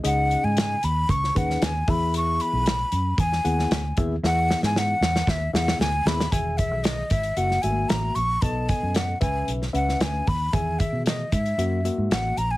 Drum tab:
HH |x-x-x-x-x-x-x-o-|x-x-x-x-x-x-x-x-|----------------|x-x-x-xxx-x-x-x-|
SD |----o----o-oo---|----o----o-oo---|o-ooo-ooo-ooo-oo|----o----o--o---|
BD |--------o-o---o-|--------o-----o-|--------o-------|o-o---o---------|

HH |x-x-x-x-x-x-x-o-|x-x-x-xxx-x-x-x-|
SD |----o----o-oo---|----o-------o---|
BD |o-o---o-------o-|o-o---o---------|